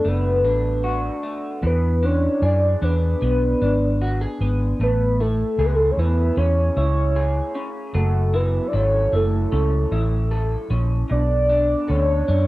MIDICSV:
0, 0, Header, 1, 4, 480
1, 0, Start_track
1, 0, Key_signature, 3, "major"
1, 0, Tempo, 788436
1, 997, Time_signature, 4, 2, 24, 8
1, 7593, End_track
2, 0, Start_track
2, 0, Title_t, "Soft synth lead"
2, 0, Program_c, 0, 80
2, 47, Note_on_c, 0, 71, 110
2, 762, Note_off_c, 0, 71, 0
2, 1013, Note_on_c, 0, 71, 104
2, 1248, Note_on_c, 0, 73, 94
2, 1257, Note_off_c, 0, 71, 0
2, 1488, Note_on_c, 0, 74, 94
2, 1497, Note_off_c, 0, 73, 0
2, 1726, Note_on_c, 0, 71, 105
2, 1735, Note_off_c, 0, 74, 0
2, 2683, Note_off_c, 0, 71, 0
2, 2941, Note_on_c, 0, 71, 93
2, 3168, Note_on_c, 0, 69, 85
2, 3177, Note_off_c, 0, 71, 0
2, 3404, Note_off_c, 0, 69, 0
2, 3408, Note_on_c, 0, 69, 78
2, 3440, Note_on_c, 0, 71, 69
2, 3449, Note_off_c, 0, 69, 0
2, 3499, Note_on_c, 0, 69, 84
2, 3508, Note_off_c, 0, 71, 0
2, 3597, Note_on_c, 0, 73, 65
2, 3606, Note_off_c, 0, 69, 0
2, 3644, Note_on_c, 0, 71, 100
2, 3653, Note_off_c, 0, 73, 0
2, 3882, Note_on_c, 0, 73, 110
2, 3891, Note_off_c, 0, 71, 0
2, 4121, Note_off_c, 0, 73, 0
2, 4124, Note_on_c, 0, 73, 102
2, 4577, Note_off_c, 0, 73, 0
2, 4839, Note_on_c, 0, 69, 94
2, 5082, Note_on_c, 0, 71, 86
2, 5091, Note_off_c, 0, 69, 0
2, 5281, Note_on_c, 0, 74, 68
2, 5290, Note_off_c, 0, 71, 0
2, 5325, Note_on_c, 0, 73, 102
2, 5334, Note_off_c, 0, 74, 0
2, 5568, Note_on_c, 0, 69, 86
2, 5577, Note_off_c, 0, 73, 0
2, 6524, Note_off_c, 0, 69, 0
2, 6765, Note_on_c, 0, 74, 118
2, 7243, Note_on_c, 0, 73, 108
2, 7252, Note_off_c, 0, 74, 0
2, 7593, Note_off_c, 0, 73, 0
2, 7593, End_track
3, 0, Start_track
3, 0, Title_t, "Clean electric guitar"
3, 0, Program_c, 1, 27
3, 0, Note_on_c, 1, 47, 80
3, 0, Note_on_c, 1, 62, 51
3, 0, Note_on_c, 1, 66, 62
3, 30, Note_on_c, 1, 57, 65
3, 270, Note_off_c, 1, 62, 0
3, 272, Note_on_c, 1, 62, 57
3, 504, Note_off_c, 1, 66, 0
3, 511, Note_on_c, 1, 66, 60
3, 742, Note_off_c, 1, 57, 0
3, 749, Note_on_c, 1, 57, 49
3, 989, Note_off_c, 1, 47, 0
3, 991, Note_on_c, 1, 52, 73
3, 1042, Note_off_c, 1, 57, 0
3, 1042, Note_off_c, 1, 66, 0
3, 1234, Note_off_c, 1, 62, 0
3, 1234, Note_on_c, 1, 62, 57
3, 1476, Note_on_c, 1, 68, 57
3, 1710, Note_off_c, 1, 62, 0
3, 1718, Note_on_c, 1, 62, 54
3, 1961, Note_on_c, 1, 59, 60
3, 2195, Note_off_c, 1, 62, 0
3, 2203, Note_on_c, 1, 62, 58
3, 2442, Note_off_c, 1, 68, 0
3, 2445, Note_on_c, 1, 66, 63
3, 2564, Note_off_c, 1, 66, 0
3, 2564, Note_on_c, 1, 68, 57
3, 2680, Note_off_c, 1, 59, 0
3, 2687, Note_on_c, 1, 59, 51
3, 2926, Note_off_c, 1, 52, 0
3, 2928, Note_on_c, 1, 57, 72
3, 2969, Note_off_c, 1, 62, 0
3, 2970, Note_off_c, 1, 68, 0
3, 2971, Note_off_c, 1, 59, 0
3, 3168, Note_on_c, 1, 64, 55
3, 3402, Note_on_c, 1, 68, 66
3, 3643, Note_off_c, 1, 64, 0
3, 3646, Note_on_c, 1, 64, 58
3, 3881, Note_on_c, 1, 61, 64
3, 4118, Note_off_c, 1, 64, 0
3, 4120, Note_on_c, 1, 64, 53
3, 4353, Note_off_c, 1, 68, 0
3, 4361, Note_on_c, 1, 68, 63
3, 4595, Note_off_c, 1, 61, 0
3, 4598, Note_on_c, 1, 61, 55
3, 4835, Note_off_c, 1, 57, 0
3, 4837, Note_on_c, 1, 54, 76
3, 4888, Note_off_c, 1, 68, 0
3, 5074, Note_off_c, 1, 64, 0
3, 5077, Note_on_c, 1, 64, 51
3, 5316, Note_on_c, 1, 69, 62
3, 5551, Note_off_c, 1, 64, 0
3, 5558, Note_on_c, 1, 64, 57
3, 5794, Note_off_c, 1, 61, 0
3, 5797, Note_on_c, 1, 61, 63
3, 6033, Note_off_c, 1, 64, 0
3, 6040, Note_on_c, 1, 64, 59
3, 6276, Note_off_c, 1, 69, 0
3, 6279, Note_on_c, 1, 69, 65
3, 6510, Note_off_c, 1, 61, 0
3, 6518, Note_on_c, 1, 61, 56
3, 6755, Note_on_c, 1, 47, 74
3, 6807, Note_off_c, 1, 61, 0
3, 6808, Note_off_c, 1, 64, 0
3, 6968, Note_off_c, 1, 54, 0
3, 6997, Note_on_c, 1, 62, 53
3, 7231, Note_off_c, 1, 69, 0
3, 7234, Note_on_c, 1, 69, 68
3, 7474, Note_off_c, 1, 62, 0
3, 7476, Note_on_c, 1, 62, 59
3, 7593, Note_off_c, 1, 47, 0
3, 7593, Note_off_c, 1, 62, 0
3, 7593, Note_off_c, 1, 69, 0
3, 7593, End_track
4, 0, Start_track
4, 0, Title_t, "Fingered electric bass"
4, 0, Program_c, 2, 33
4, 32, Note_on_c, 2, 30, 81
4, 275, Note_off_c, 2, 30, 0
4, 275, Note_on_c, 2, 33, 83
4, 660, Note_off_c, 2, 33, 0
4, 993, Note_on_c, 2, 40, 109
4, 1379, Note_off_c, 2, 40, 0
4, 1472, Note_on_c, 2, 42, 84
4, 1667, Note_off_c, 2, 42, 0
4, 1715, Note_on_c, 2, 40, 88
4, 1909, Note_off_c, 2, 40, 0
4, 1959, Note_on_c, 2, 35, 81
4, 2151, Note_off_c, 2, 35, 0
4, 2202, Note_on_c, 2, 32, 81
4, 2585, Note_off_c, 2, 32, 0
4, 2681, Note_on_c, 2, 32, 80
4, 2872, Note_off_c, 2, 32, 0
4, 2919, Note_on_c, 2, 33, 89
4, 3303, Note_off_c, 2, 33, 0
4, 3399, Note_on_c, 2, 37, 82
4, 3591, Note_off_c, 2, 37, 0
4, 3636, Note_on_c, 2, 40, 79
4, 3830, Note_off_c, 2, 40, 0
4, 3878, Note_on_c, 2, 40, 92
4, 4070, Note_off_c, 2, 40, 0
4, 4120, Note_on_c, 2, 37, 91
4, 4504, Note_off_c, 2, 37, 0
4, 4838, Note_on_c, 2, 30, 95
4, 5222, Note_off_c, 2, 30, 0
4, 5319, Note_on_c, 2, 32, 73
4, 5511, Note_off_c, 2, 32, 0
4, 5556, Note_on_c, 2, 30, 85
4, 5749, Note_off_c, 2, 30, 0
4, 5799, Note_on_c, 2, 37, 91
4, 5991, Note_off_c, 2, 37, 0
4, 6036, Note_on_c, 2, 33, 94
4, 6422, Note_off_c, 2, 33, 0
4, 6517, Note_on_c, 2, 34, 87
4, 6710, Note_off_c, 2, 34, 0
4, 6762, Note_on_c, 2, 35, 89
4, 7145, Note_off_c, 2, 35, 0
4, 7242, Note_on_c, 2, 38, 79
4, 7433, Note_off_c, 2, 38, 0
4, 7479, Note_on_c, 2, 42, 87
4, 7593, Note_off_c, 2, 42, 0
4, 7593, End_track
0, 0, End_of_file